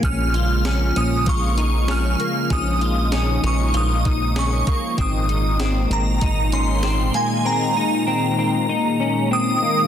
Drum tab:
HH |xxxxxxxx|xxxxxxxx|xxxxxxxx|--------|
SD |--o---o-|--o---o-|--o---o-|--------|
BD |o---o---|o----o-o|o---o---|--------|